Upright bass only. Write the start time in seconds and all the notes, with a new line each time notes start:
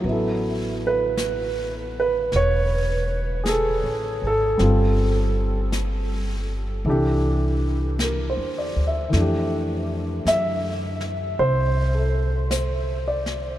0.04 A1
2.32 E1
3.84 A1
4.22 G#1
4.60 G1
6.85 C2
8.37 E2
8.76 D2
9.13 F2
10.25 F#2
11.39 C2